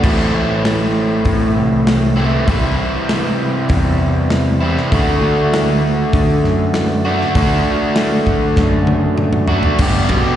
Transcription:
0.02 picked electric bass A1, overdriven electric guitar A2 E3 A3 C4 E4, kick, crash
0.33 picked electric bass A1
0.65 snare, open hi-hat
1.25 picked electric bass A2, kick, open hi-hat
1.56 picked electric bass C2
1.87 snare, open hi-hat
2.16 overdriven electric guitar A2 E3 A3 C4 E4
2.46 picked electric bass C2, overdriven electric guitar C3 E3 G3 C4 E4, kick, open hi-hat
3.09 snare, open hi-hat
3.69 picked electric bass E2, kick, open hi-hat
4.30 snare, open hi-hat
4.61 overdriven electric guitar C3 E3 G3 C4 E4
4.77 snare
4.92 picked electric bass D2, overdriven electric guitar D3 A3 D4 F#4, kick, open hi-hat
5.22 picked electric bass D2
5.54 snare, open hi-hat
6.13 picked electric bass D3, kick, open hi-hat
6.43 picked electric bass F#2, snare
6.74 snare, open hi-hat
7.05 overdriven electric guitar D3 A3 D4 F#4
7.21 snare
7.35 picked electric bass D2, overdriven electric guitar D3 A3 D4 F#4, kick, open hi-hat
7.96 snare, open hi-hat
8.27 kick
8.56 picked electric bass F#2, kick, snare
8.87 high tom
9.18 mid tom
9.33 mid tom
9.48 overdriven electric guitar A3 D4 F#4, floor tom
9.52 overdriven electric guitar D3
9.63 floor tom
9.78 picked electric bass G2, overdriven electric guitar G2 D3 G3 B3 D4 G4, kick, crash
10.09 overdriven electric guitar G2 D3 G3 B3 D4 G4, picked electric bass B2, kick, ride

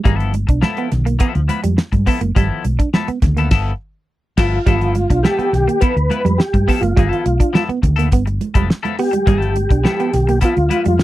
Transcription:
0.04 fingered electric bass G1, clean electric guitar E3 G3 A#3 D#4 G#4, kick, closed hi-hat, low conga
0.15 clean electric guitar F3 B3 E4 A4
0.20 closed hi-hat
0.33 muted clean electric guitar stroke, closed hi-hat, high conga
0.47 fingered electric bass B1, clean electric guitar D4, muted clean electric guitar stroke, kick, closed hi-hat
0.62 clean electric guitar F3 B3 E4 A4, snare, muted conga, high conga
0.77 clean electric guitar B3, closed hi-hat
0.91 fingered electric bass B1, muted clean electric guitar stroke, snare, closed hi-hat, low conga
1.05 clean electric guitar A#3, muted clean electric guitar stroke, closed hi-hat
1.19 clean electric guitar F3 B3 E4 A4, kick, closed hi-hat
1.33 fingered electric bass D2, muted clean electric guitar stroke, closed hi-hat, muted conga
1.48 clean electric guitar F3 B3 E4 B4, closed hi-hat, high conga
1.63 fingered electric bass F2, clean electric guitar G3, muted clean electric guitar stroke, closed hi-hat, high conga
1.77 muted clean electric guitar stroke, snare, muted conga
1.92 fingered electric bass G2, muted clean electric guitar stroke, kick, closed hi-hat, muted conga, high conga
2.06 clean electric guitar F3 B3 E4 A4, kick, open hi-hat
2.21 fingered electric bass F#1, clean electric guitar A#3, closed hi-hat, high conga
2.35 fingered electric bass G1, clean electric guitar F3 G3 B3 E4 A4, kick, closed hi-hat, muted conga, low conga
2.64 fingered electric bass B1, muted clean electric guitar stroke, closed hi-hat, high conga
2.79 clean electric guitar D4, muted clean electric guitar stroke, kick, closed hi-hat
2.94 clean electric guitar F3 B3 E4 A4, snare, high conga
3.08 clean electric guitar B3, muted fingered electric bass stroke, closed hi-hat
3.22 fingered electric bass D2, muted clean electric guitar stroke, kick, snare, closed hi-hat, low conga
3.37 clean electric guitar F3 A#3 B3 E4 A4, closed hi-hat
3.51 fingered electric bass G1, clean electric guitar F3 B3 E4 A4, kick, snare, crash
4.37 fingered electric bass G1, clean electric guitar F3 B3 E4 A4, tonewheel organ F4, kick, snare, crash
4.66 fingered electric bass G1, clean electric guitar F3 G3 B3 E4 A4, kick, closed hi-hat, low conga
4.81 closed hi-hat
4.95 muted clean electric guitar stroke, closed hi-hat, high conga
5.10 fingered electric bass B1, clean electric guitar D4, muted clean electric guitar stroke, kick, closed hi-hat
5.23 clean electric guitar F3 B3 E4 A4, tonewheel organ G4, snare, high conga
5.38 clean electric guitar B3, muted fingered electric bass stroke, closed hi-hat, muted conga
5.53 fingered electric bass B1, muted clean electric guitar stroke, snare, closed hi-hat, low conga
5.68 clean electric guitar A#3, muted clean electric guitar stroke, closed hi-hat
5.81 clean electric guitar F3 B3 E4 A4, tonewheel organ B4, kick, closed hi-hat
5.96 fingered electric bass D2, muted clean electric guitar stroke, closed hi-hat
6.10 clean electric guitar F3 B3 E4 B4, closed hi-hat, high conga
6.25 fingered electric bass F2, clean electric guitar G3, muted clean electric guitar stroke, closed hi-hat, high conga
6.38 tonewheel organ G4, muted clean electric guitar stroke, snare, muted conga
6.54 fingered electric bass G2, muted clean electric guitar stroke, kick, closed hi-hat, high conga
6.68 clean electric guitar F3 B3 E4 A4, kick, open hi-hat
6.81 fingered electric bass F#1, clean electric guitar A#3, tonewheel organ F4, muted clean electric guitar stroke, closed hi-hat, high conga
6.97 fingered electric bass G1, clean electric guitar E3 G3 A#3 D#4 G#4, kick, closed hi-hat, muted conga, low conga
7.08 clean electric guitar F3 B3 E4 A4
7.13 closed hi-hat
7.26 fingered electric bass B1, muted clean electric guitar stroke, closed hi-hat, high conga
7.40 clean electric guitar D4, muted clean electric guitar stroke, kick, closed hi-hat
7.53 clean electric guitar F3 B3 E4 A4, snare, muted conga, high conga
7.69 clean electric guitar B3, muted fingered electric bass stroke, closed hi-hat, muted conga
7.82 fingered electric bass D2, muted clean electric guitar stroke, kick, closed hi-hat, low conga
7.96 clean electric guitar F3 A#3 B3 E4 A4, closed hi-hat
8.11 fingered electric bass G1, clean electric guitar B3, muted clean electric guitar stroke, kick, closed hi-hat, muted conga
8.26 muted clean electric guitar stroke, closed hi-hat, muted conga
8.41 closed hi-hat, high conga
8.54 fingered electric bass F1, clean electric guitar F3 G3 B3 E4 A4, kick, closed hi-hat, high conga
8.69 muted clean electric guitar stroke, snare
8.83 clean electric guitar F3 B3 E4 A4, closed hi-hat, muted conga, high conga
8.97 clean electric guitar B3, tonewheel organ G4, muted clean electric guitar stroke, open hi-hat
9.11 clean electric guitar G3, muted clean electric guitar stroke, closed hi-hat, high conga
9.26 fingered electric bass G1, clean electric guitar E3 G3 A#3 D#4 G#4, kick, closed hi-hat, low conga
9.37 clean electric guitar F3 B3 E4 A4
9.42 closed hi-hat
9.56 muted clean electric guitar stroke, closed hi-hat, high conga
9.69 fingered electric bass B1, clean electric guitar D4, muted clean electric guitar stroke, kick, closed hi-hat
9.84 clean electric guitar F3 B3 E4 A4, tonewheel organ G4, snare, high conga
10.00 clean electric guitar B3, closed hi-hat
10.13 fingered electric bass B1, muted clean electric guitar stroke, snare, closed hi-hat, low conga
10.27 clean electric guitar A#3, muted clean electric guitar stroke, closed hi-hat
10.41 clean electric guitar F3 B3 E4 A4, tonewheel organ F4, kick, closed hi-hat, muted conga
10.55 fingered electric bass D2, muted clean electric guitar stroke, closed hi-hat, muted conga
10.69 clean electric guitar F3 B3 E4 B4, closed hi-hat, high conga
10.84 fingered electric bass F2, clean electric guitar G3, tonewheel organ F4, muted clean electric guitar stroke, closed hi-hat, high conga
10.98 muted clean electric guitar stroke, snare, muted conga

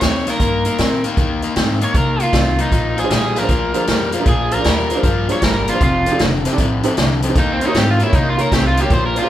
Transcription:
Already playing: overdriven electric guitar C#5
0.01 upright bass D#2, overdriven electric guitar D#3 C4, snare, closed hi-hat
0.27 overdriven electric guitar D#3 A#3 A#4, snare, closed hi-hat
0.40 upright bass G2, overdriven electric guitar D#3 A#3, kick, closed hi-hat
0.65 overdriven electric guitar D#3 A#3, closed hi-hat
0.78 upright bass A#2, overdriven electric guitar D#3 C4, snare, closed hi-hat
1.04 overdriven electric guitar D#3 A#3, closed hi-hat
1.17 upright bass D#2, overdriven electric guitar D#3 A#3, kick, closed hi-hat
1.42 overdriven electric guitar D#3 A#3, closed hi-hat
1.56 upright bass G#2, overdriven electric guitar D#3 C4, snare, closed hi-hat
1.81 overdriven electric guitar D#3 A#3 C#5, closed hi-hat
1.94 upright bass C3, overdriven electric guitar D#3 A#3 A#4, kick, closed hi-hat
2.20 overdriven electric guitar D#3 A#3 F4, closed hi-hat
2.33 upright bass C2, overdriven electric guitar D#3 C4, kick, snare, closed hi-hat
2.58 overdriven electric guitar D#3 A#3 D#4, closed hi-hat
2.72 upright bass A#1, overdriven electric guitar A#2 F3, kick, closed hi-hat
2.97 overdriven electric guitar A#2 F3 G#4, honky-tonk piano G#4 C5, closed hi-hat
3.03 honky-tonk piano D4 F4 G#4 C5
3.10 upright bass A#1, overdriven electric guitar A#2 G3 G#4, snare, closed hi-hat
3.34 overdriven electric guitar A#2 F3 A#4, honky-tonk piano G#4 C5, snare, closed hi-hat
3.41 honky-tonk piano D4 F4 G#4 C5
3.48 upright bass D2, overdriven electric guitar A#2 F3, kick, closed hi-hat
3.74 overdriven electric guitar A#2 F3, honky-tonk piano D4 F4 G#4 C5, closed hi-hat
3.87 upright bass F2, overdriven electric guitar A#2 G3, snare, closed hi-hat
4.12 overdriven electric guitar A#2 F3, honky-tonk piano G#4 C5, closed hi-hat
4.19 honky-tonk piano D4 F4 G#4 A#4
4.26 upright bass A#1, overdriven electric guitar A#2 F3 G#4, kick, closed hi-hat
4.50 overdriven electric guitar A#2 F3, honky-tonk piano G#4 C5, closed hi-hat
4.55 honky-tonk piano D4 F4 G#4 D5, overdriven electric guitar A#4
4.64 upright bass D#2, overdriven electric guitar A#2 G3, snare, closed hi-hat
4.88 overdriven electric guitar A#2 F3, honky-tonk piano G#4 C5, closed hi-hat
4.95 honky-tonk piano D4 F4 G#4 C5
5.03 upright bass G2, overdriven electric guitar A#2 F3, kick, closed hi-hat
5.28 overdriven electric guitar A#2 F3, honky-tonk piano D4 F4 G#4 C5, closed hi-hat
5.32 overdriven electric guitar C#5
5.42 upright bass G1, overdriven electric guitar A#2 G3 A#4, kick, snare, closed hi-hat
5.66 overdriven electric guitar A#2 F3 F4, honky-tonk piano G#4 A#4, closed hi-hat
5.72 honky-tonk piano D4 F4 G#4 C5
5.81 upright bass F1, overdriven electric guitar F2 C3 F4, kick, closed hi-hat
6.05 overdriven electric guitar F2 C3, honky-tonk piano A4 C5, closed hi-hat
6.11 honky-tonk piano D#4 G4 A4 D5
6.19 upright bass F1, overdriven electric guitar F2 D3, snare, closed hi-hat
6.43 overdriven electric guitar F2 C3, honky-tonk piano A4 C5, snare, closed hi-hat
6.52 honky-tonk piano D#4 G4 A4 D5
6.58 upright bass A1, overdriven electric guitar F2 C3, kick, closed hi-hat
6.83 overdriven electric guitar F2 C3, honky-tonk piano D#4 G4 A4 C5, closed hi-hat
6.97 upright bass C2, overdriven electric guitar F2 D3, snare, closed hi-hat
7.22 overdriven electric guitar F2 C3, honky-tonk piano A4 C5, closed hi-hat
7.28 honky-tonk piano D#4 G4 A4 C5
7.35 upright bass D#2, overdriven electric guitar D#3 A#3 D#4, kick, closed hi-hat
7.52 overdriven electric guitar C4
7.60 overdriven electric guitar D#3 A#3, honky-tonk piano A#4 C#5, closed hi-hat
7.66 overdriven electric guitar D#4, honky-tonk piano F4 G4 A#4 C#5
7.74 upright bass G#2, overdriven electric guitar D#3 C4 G4, snare, closed hi-hat
7.91 overdriven electric guitar F4
7.99 overdriven electric guitar D#3 A#3, honky-tonk piano A#4 C#5, closed hi-hat
8.03 overdriven electric guitar E4, honky-tonk piano F4 G4
8.08 honky-tonk piano A#4 C#5
8.13 upright bass C3, overdriven electric guitar D#3 A#3 D#4, kick, closed hi-hat
8.29 overdriven electric guitar F4
8.38 overdriven electric guitar D#3 A#3 A#4, honky-tonk piano F4 G4 A#4 C#5, closed hi-hat
8.52 upright bass C2, overdriven electric guitar D#3 C4 G4, kick, snare, closed hi-hat
8.67 overdriven electric guitar F4
8.76 overdriven electric guitar D#3 A#3, honky-tonk piano A#4 D#5, closed hi-hat
8.80 honky-tonk piano F4 G4 A#4 C#5, overdriven electric guitar G4
8.90 upright bass A#1, overdriven electric guitar A#2 F3 C5, kick, closed hi-hat
9.06 overdriven electric guitar A#4
9.14 overdriven electric guitar A#2 F3, honky-tonk piano C5 D5, closed hi-hat
9.19 overdriven electric guitar F4, honky-tonk piano F4
9.23 honky-tonk piano G#4 C5 D5

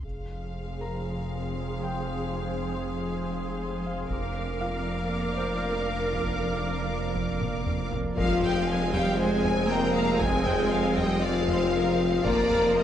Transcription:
0.03 sub bass F1, double bass section F1, cello section F2, ambient pad F3 C4 G#4 C5, french horn section G#3 C4, viola section G#4, violin section F5 C6, taiko
0.81 felt piano A#4 A#5
1.83 felt piano G5
3.86 felt piano F5
4.09 sub bass F1, double bass section F1, cello section F2, ambient pad F3 A#3 A#4 D5, french horn section A#3 D4, viola section A#4, violin section F5 D6, taiko
4.60 felt piano F4 F5
5.37 felt piano C5
6.13 taiko
7.15 taiko
7.41 taiko mid
7.66 taiko low-mid
7.92 taiko low
8.16 tuba F1, sub bass F1, double bass section F2, ambient pad F3 C4 G#4 F5, trombone section F3 C4, cello section F3, viola section G#3 C4, french horn section F4, felt piano A#4, violin section F5, taiko
8.42 violin section G5, taiko low-mid
8.69 violin section G#5
8.93 cello section G3, french horn section G4, violin section F5 G5, taiko low-mid
9.19 cello section G#3, french horn section G#4, violin section C5 G#5
9.44 violin section G#5, taiko low-mid
9.69 cello section A#3, french horn section A#4, violin section G5 A#5
9.95 violin section F5
10.19 cello section G#3, french horn section G#4, violin section G#5, taiko
10.45 violin section G5, taiko low-mid
10.71 violin section F5
10.97 cello section G3, french horn section G4, violin section D#5 G5, taiko low-mid
11.23 cello section F3, french horn section F4, violin section D5 F5
11.48 violin section C5, taiko low-mid
11.74 violin section A#4
11.99 violin section C5
12.23 tuba F1, sub bass F1, double bass section F2, viola section F3 F4, ambient pad F3 F4 A#4 F5, trombone section F3 F4, cello section A#3, french horn section A#4, felt piano D5, violin section D5 A#5, taiko
12.50 taiko low-mid
12.77 violin section D#5

